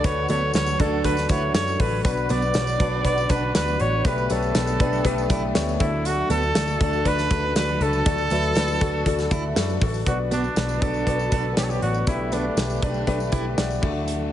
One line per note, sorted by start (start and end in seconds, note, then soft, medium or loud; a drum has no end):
0.00 0.51 D3 medium
0.00 10.03 D3 medium
0.00 4.01 F#3 medium
0.00 2.01 A3 medium
0.00 0.05 D4 medium
0.00 0.05 F#4 medium
0.00 2.01 F#4 medium
0.00 0.30 A4 loud
0.00 2.01 A4 medium
0.00 0.04 B4 medium
0.04 0.25 D2 loud
0.04 0.24 D4 medium
0.04 0.24 F#4 medium
0.04 0.24 B4 loud
0.04 0.30 C#5 loud
0.04 kick loud
0.04 closed hi-hat medium
0.04 tambourine soft
0.28 0.50 D2 loud
0.28 0.41 B3 medium
0.28 0.49 D4 medium
0.28 0.49 F#4 medium
0.28 0.49 A4 medium
0.28 0.53 C#5 loud
0.28 closed hi-hat medium
0.28 tambourine medium
0.54 0.75 D2 medium
0.54 0.74 D4 medium
0.54 0.74 F#4 medium
0.54 0.74 B4 medium
0.54 0.82 C#5 loud
0.54 snare loud
0.54 closed hi-hat medium
0.54 tambourine medium
0.66 tambourine medium
0.80 1.00 D2 loud
0.80 0.99 D4 medium
0.80 1.15 D4 medium
0.80 0.99 F#4 medium
0.80 0.99 A4 medium
0.80 1.04 A4 medium
0.80 kick medium
0.80 closed hi-hat medium
1.04 1.25 D2 loud
1.04 1.24 D4 medium
1.04 1.24 F#4 medium
1.04 1.24 A4 medium
1.04 1.31 B4 loud
1.04 kick medium
1.04 closed hi-hat medium
1.17 snare soft
1.17 tambourine soft
1.29 1.50 D2 medium
1.29 1.49 D4 medium
1.29 1.42 E4 medium
1.29 1.49 F#4 medium
1.29 1.49 B4 medium
1.29 1.54 C#5 loud
1.29 kick loud
1.29 closed hi-hat medium
1.29 tambourine medium
1.54 1.75 F#2 medium
1.54 1.74 D4 medium
1.54 1.74 F#4 medium
1.54 1.74 A4 medium
1.54 1.82 C#5 loud
1.54 snare loud
1.54 closed hi-hat medium
1.54 tambourine medium
1.67 tambourine soft
1.79 2.00 A1 medium
1.79 1.99 D4 medium
1.79 1.99 F#4 medium
1.79 1.99 A4 medium
1.79 2.04 B4 medium
1.79 kick medium
1.79 open hi-hat medium
2.04 2.25 B1 loud
2.04 2.76 B2 medium
2.04 5.77 B3 medium
2.04 2.25 D4 medium
2.04 4.03 F#4 medium
2.04 2.25 F#4 medium
2.04 4.03 B4 medium
2.04 2.32 B4 medium
2.04 2.24 B4 loud
2.04 kick loud
2.04 closed hi-hat loud
2.04 tambourine soft
2.17 tambourine soft
2.29 2.50 B1 loud
2.29 2.42 B3 medium
2.29 2.50 D4 medium
2.29 2.49 F#4 medium
2.29 2.49 B4 medium
2.29 3.05 D5 loud
2.29 closed hi-hat medium
2.29 tambourine medium
2.42 tambourine soft
2.54 2.75 B1 loud
2.54 2.75 D4 medium
2.54 2.75 F#4 medium
2.54 2.75 C#5 medium
2.54 snare loud
2.54 closed hi-hat medium
2.54 tambourine loud
2.67 tambourine medium
2.80 3.00 B1 loud
2.80 2.99 D4 medium
2.80 3.16 D4 medium
2.80 3.00 F#4 medium
2.80 2.99 B4 medium
2.80 kick loud
2.80 closed hi-hat medium
3.04 3.25 B1 medium
3.04 3.24 D4 medium
3.04 3.25 F#4 medium
3.04 3.24 B4 loud
3.04 3.32 D5 loud
3.04 kick medium
3.04 closed hi-hat medium
3.18 tambourine soft
3.29 3.50 B1 medium
3.29 3.50 D4 medium
3.29 3.42 D4 medium
3.29 3.50 F#4 medium
3.29 3.50 B4 medium
3.29 3.55 B4 loud
3.29 kick loud
3.29 closed hi-hat medium
3.29 tambourine medium
3.55 3.76 D2 medium
3.55 3.75 D4 medium
3.55 3.75 F#4 medium
3.55 3.82 B4 loud
3.55 3.75 D5 medium
3.55 snare loud
3.55 closed hi-hat loud
3.55 tambourine medium
3.68 tambourine soft
3.80 4.01 A1 loud
3.80 4.00 D4 medium
3.80 4.00 F#4 medium
3.80 4.07 C#5 loud
3.80 4.00 C#5 medium
3.80 closed hi-hat medium
4.05 4.25 B1 loud
4.05 4.77 B2 medium
4.05 5.79 G3 medium
4.05 10.03 A3 medium
4.05 4.25 A3 loud
4.05 4.25 B3 medium
4.05 4.25 D4 medium
4.05 5.79 G4 medium
4.05 4.25 G4 medium
4.05 4.30 B4 loud
4.05 4.25 B4 loud
4.05 kick loud
4.05 closed hi-hat medium
4.05 tambourine soft
4.18 tambourine soft
4.30 4.51 B1 loud
4.30 4.50 A3 medium
4.30 4.42 B3 medium
4.30 4.50 B3 medium
4.30 4.50 D4 medium
4.30 4.50 G4 medium
4.30 5.50 A4 medium
4.30 4.50 C#5 medium
4.30 closed hi-hat medium
4.30 tambourine medium
4.42 tambourine soft
4.55 4.76 B1 loud
4.55 4.75 A3 medium
4.55 4.75 B3 medium
4.55 4.75 D4 medium
4.55 4.75 G4 medium
4.55 4.75 B4 medium
4.55 snare loud
4.55 closed hi-hat medium
4.55 tambourine loud
4.67 tambourine medium
4.80 5.01 B1 loud
4.80 5.00 A3 medium
4.80 5.00 B3 medium
4.80 5.16 D4 medium
4.80 5.00 D4 medium
4.80 5.00 G4 medium
4.80 5.00 B4 loud
4.80 kick loud
4.80 closed hi-hat medium
4.93 tambourine soft
5.05 5.26 B1 medium
5.05 5.25 A3 loud
5.05 5.25 B3 loud
5.05 5.25 D4 medium
5.05 5.25 G4 loud
5.05 5.25 B4 loud
5.05 kick medium
5.05 closed hi-hat medium
5.18 tambourine soft
5.30 5.51 B1 loud
5.30 5.50 A3 medium
5.30 5.50 B3 medium
5.30 5.50 D4 medium
5.30 5.42 E4 medium
5.30 5.50 G4 medium
5.30 5.50 B4 medium
5.30 kick loud
5.30 closed hi-hat medium
5.30 tambourine medium
5.55 5.76 D2 medium
5.55 5.75 A3 medium
5.55 5.75 B3 medium
5.55 5.75 D4 medium
5.55 5.75 G4 medium
5.55 5.75 C#5 loud
5.55 snare loud
5.55 closed hi-hat loud
5.55 tambourine medium
5.69 tambourine soft
5.80 6.21 D2 medium
5.80 6.51 D3 medium
5.80 10.02 F#3 medium
5.80 6.20 D4 medium
5.80 6.08 E4 loud
5.80 6.20 F#4 medium
5.80 10.02 F#4 medium
5.80 6.20 A4 medium
5.80 10.02 A4 medium
5.80 kick loud
5.80 closed hi-hat medium
6.05 6.30 F#4 loud
6.05 closed hi-hat medium
6.05 tambourine soft
6.30 6.51 D2 loud
6.30 6.42 B3 medium
6.30 6.50 D4 medium
6.30 6.50 F#4 medium
6.30 6.50 A4 medium
6.30 6.77 A4 loud
6.30 closed hi-hat medium
6.30 tambourine medium
6.43 tambourine soft
6.55 6.76 D2 loud
6.55 6.75 D4 medium
6.55 6.75 F#4 medium
6.55 6.75 A4 medium
6.55 snare loud
6.55 closed hi-hat medium
6.55 tambourine medium
6.68 tambourine medium
6.80 7.01 D2 loud
6.80 7.16 D4 medium
6.80 7.00 D4 medium
6.80 7.01 F#4 medium
6.80 7.00 A4 medium
6.80 7.09 A4 loud
6.80 kick loud
6.80 closed hi-hat medium
6.93 tambourine soft
7.05 7.26 D2 loud
7.05 7.25 D4 medium
7.05 7.25 F#4 medium
7.05 7.25 B4 loud
7.05 7.56 B4 loud
7.05 kick medium
7.05 closed hi-hat medium
7.19 snare soft
7.19 tambourine soft
7.31 7.51 D2 medium
7.31 7.43 D4 medium
7.31 7.50 A4 medium
7.31 kick loud
7.31 closed hi-hat medium
7.31 tambourine soft
7.56 7.76 D2 medium
7.56 7.76 D4 medium
7.56 7.76 F#4 medium
7.56 7.76 B4 medium
7.56 7.84 B4 loud
7.56 snare loud
7.56 closed hi-hat medium
7.56 tambourine medium
7.69 tambourine soft
7.80 8.01 C#2 loud
7.80 8.53 D3 medium
7.80 8.01 D4 medium
7.80 8.01 F#4 medium
7.80 8.01 A4 medium
7.80 9.57 A4 loud
7.80 closed hi-hat medium
7.93 tambourine soft
8.06 8.27 D2 loud
8.06 8.26 D4 loud
8.06 8.26 F#4 medium
8.06 8.26 A4 loud
8.06 kick loud
8.06 closed hi-hat medium
8.06 tambourine soft
8.18 tambourine soft
8.30 8.51 D2 loud
8.30 8.51 D4 medium
8.30 8.43 E4 medium
8.30 8.51 F#4 medium
8.30 8.51 B4 medium
8.30 closed hi-hat medium
8.30 tambourine medium
8.43 tambourine soft
8.55 8.76 D2 loud
8.55 8.76 D4 loud
8.55 8.76 F#4 medium
8.55 8.76 B4 loud
8.55 snare loud
8.55 closed hi-hat medium
8.55 tambourine medium
8.68 tambourine medium
8.81 9.02 D2 loud
8.81 9.01 D4 loud
8.81 9.16 F#4 medium
8.81 9.01 F#4 medium
8.81 9.01 A4 loud
8.81 kick loud
8.81 closed hi-hat medium
9.06 9.27 D2 loud
9.06 9.26 D4 loud
9.06 9.26 F#4 loud
9.06 9.26 A4 loud
9.06 kick medium
9.06 closed hi-hat medium
9.19 snare soft
9.19 tambourine soft
9.31 9.52 D2 loud
9.31 9.51 D4 medium
9.31 9.43 E4 medium
9.31 9.51 F#4 medium
9.31 9.51 A4 medium
9.31 kick medium
9.31 closed hi-hat medium
9.31 tambourine medium
9.56 9.77 F#2 medium
9.56 9.77 D4 medium
9.56 9.77 F#4 medium
9.56 9.77 A4 medium
9.56 snare loud
9.56 closed hi-hat medium
9.56 tambourine medium
9.69 tambourine soft
9.82 10.02 A1 loud
9.82 10.02 D4 medium
9.82 10.02 F#4 medium
9.82 10.02 A4 medium
9.82 kick loud
9.82 open hi-hat medium
9.94 tambourine soft
10.06 10.48 B1 loud
10.06 10.78 B2 medium
10.06 14.32 D3 medium
10.06 12.05 F#3 medium
10.06 13.79 B3 medium
10.06 10.27 B3 medium
10.06 10.27 D4 medium
10.06 12.05 F#4 medium
10.06 10.19 F#4 medium
10.06 10.27 F#4 medium
10.06 12.05 B4 medium
10.06 10.27 D5 medium
10.06 kick loud
10.06 closed hi-hat medium
10.06 tambourine soft
10.31 10.43 B3 medium
10.31 10.52 B3 medium
10.31 10.52 D4 medium
10.31 10.84 D4 medium
10.31 10.52 F#4 medium
10.31 10.52 D5 medium
10.31 closed hi-hat medium
10.31 tambourine medium
10.44 tambourine soft
10.56 10.77 B1 loud
10.56 10.77 B3 medium
10.56 10.77 D4 medium
10.56 10.76 F#4 medium
10.56 10.76 B4 medium
10.56 snare loud
10.56 closed hi-hat medium
10.56 tambourine medium
10.69 tambourine medium
10.82 11.03 B1 loud
10.82 11.02 B3 medium
10.82 11.17 D4 medium
10.82 11.02 D4 medium
10.82 11.02 F#4 medium
10.82 11.57 A4 loud
10.82 11.02 D5 medium
10.82 kick loud
10.82 closed hi-hat medium
10.94 tambourine soft
11.07 11.27 B1 medium
11.07 11.27 B3 medium
11.07 11.27 D4 medium
11.07 11.27 F#4 medium
11.07 11.27 D5 medium
11.07 kick medium
11.07 closed hi-hat medium
11.19 tambourine soft
11.32 11.53 B1 medium
11.32 11.52 B3 medium
11.32 11.44 D4 medium
11.32 11.52 D4 medium
11.32 11.52 F#4 medium
11.32 11.52 D5 medium
11.32 kick loud
11.32 closed hi-hat medium
11.32 tambourine soft
11.57 11.78 B1 medium
11.57 11.77 B3 medium
11.57 11.77 D4 medium
11.57 11.77 F#4 medium
11.57 11.65 G4 loud
11.57 11.77 C#5 medium
11.57 snare loud
11.57 closed hi-hat medium
11.57 tambourine medium
11.64 11.71 A4 medium
11.70 11.82 G4 medium
11.70 tambourine soft
11.82 12.03 A1 medium
11.82 12.02 B3 medium
11.82 12.02 D4 medium
11.82 12.06 F#4 medium
11.82 12.02 F#4 medium
11.82 12.02 D5 medium
11.82 closed hi-hat medium
11.94 tambourine soft
12.07 12.48 B1 loud
12.07 12.79 B2 medium
12.07 13.81 G3 medium
12.07 12.27 A3 medium
12.07 13.81 A3 medium
12.07 12.27 D4 medium
12.07 12.35 E4 medium
12.07 12.27 G4 medium
12.07 13.81 G4 medium
12.07 12.27 B4 medium
12.07 kick loud
12.07 closed hi-hat medium
12.07 tambourine soft
12.32 12.52 A3 medium
12.32 12.44 B3 medium
12.32 12.52 D4 medium
12.32 12.83 D4 medium
12.32 12.52 G4 medium
12.32 12.52 B4 medium
12.32 closed hi-hat medium
12.32 tambourine medium
12.57 12.78 B1 medium
12.57 12.77 A3 medium
12.57 12.77 D4 medium
12.57 12.77 G4 medium
12.57 12.77 B4 medium
12.57 snare loud
12.57 closed hi-hat medium
12.57 tambourine medium
12.70 tambourine medium
12.83 13.03 B1 medium
12.83 13.02 A3 medium
12.83 13.18 D4 medium
12.83 13.02 D4 medium
12.83 13.02 G4 medium
12.83 13.02 B4 medium
12.83 kick loud
12.83 closed hi-hat medium
12.94 tambourine soft
13.07 13.28 B1 medium
13.07 13.27 A3 loud
13.07 13.27 D4 loud
13.07 13.27 G4 loud
13.07 13.27 B4 loud
13.07 kick medium
13.07 closed hi-hat medium
13.20 tambourine soft
13.32 13.53 B1 medium
13.32 13.52 A3 medium
13.32 13.52 D4 medium
13.32 13.45 E4 medium
13.32 13.52 G4 medium
13.32 13.52 D5 medium
13.32 13.56 B5 medium
13.32 kick medium
13.32 closed hi-hat medium
13.32 tambourine soft
13.58 13.78 B1 medium
13.58 13.77 A3 medium
13.58 13.77 D4 medium
13.58 13.77 G4 medium
13.58 13.77 D5 medium
13.58 14.04 F#5 medium
13.58 snare loud
13.58 closed hi-hat medium
13.58 tambourine medium
13.70 tambourine soft
13.82 14.32 D2 medium
13.82 14.32 D3 medium
13.82 14.32 F#3 medium
13.82 14.22 A3 medium
13.82 14.32 A3 medium
13.82 14.22 D4 medium
13.82 14.22 F#4 medium
13.82 14.32 F#4 medium
13.82 14.32 A4 medium
13.82 14.22 D5 medium
13.82 kick loud
13.82 crash medium
14.08 closed hi-hat medium
14.08 tambourine soft